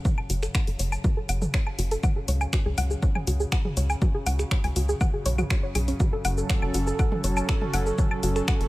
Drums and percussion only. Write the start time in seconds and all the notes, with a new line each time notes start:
0.05 kick, mid tom, shaker
0.18 claves
0.30 open hi-hat, shaker
0.43 finger snap, shaker
0.55 finger snap, kick, claves, shaker
0.67 open hi-hat
0.79 open hi-hat, shaker
0.92 claves, shaker
1.04 kick, mid tom, shaker
1.29 open hi-hat, claves, shaker
1.42 mid tom, shaker
1.54 finger snap, kick, shaker
1.67 claves
1.79 open hi-hat, shaker
1.91 open hi-hat, shaker
2.03 kick, mid tom, claves, shaker
2.28 open hi-hat, shaker
2.41 claves, shaker
2.53 finger snap, kick, shaker
2.78 open hi-hat, claves, shaker
2.91 shaker
3.03 kick, shaker
3.15 mid tom, claves
3.27 open hi-hat, shaker
3.40 shaker
3.52 finger snap, kick, claves, shaker
3.65 mid tom
3.77 open hi-hat, shaker
3.90 claves, shaker
4.02 kick, mid tom, shaker
4.26 open hi-hat, claves, shaker
4.39 finger snap, shaker
4.51 finger snap, kick, shaker
4.64 open hi-hat, claves
4.76 open hi-hat, shaker
4.89 shaker
5.01 kick, mid tom, claves, shaker
5.26 open hi-hat, shaker
5.38 mid tom, claves, shaker
5.50 finger snap, kick, shaker
5.75 open hi-hat, claves, shaker
5.88 open hi-hat, shaker
6.00 kick, mid tom, shaker
6.25 open hi-hat, claves, shaker
6.38 shaker
6.50 finger snap, kick, shaker
6.62 claves
6.74 open hi-hat, shaker
6.87 shaker
6.99 kick, claves, shaker
7.12 mid tom
7.24 open hi-hat, shaker
7.37 claves, shaker
7.49 finger snap, kick, shaker
7.61 mid tom
7.74 open hi-hat, claves, shaker
7.86 shaker
7.98 kick, mid tom, shaker
8.11 claves
8.23 open hi-hat, shaker
8.36 finger snap, shaker
8.48 finger snap, kick, claves, shaker
8.61 open hi-hat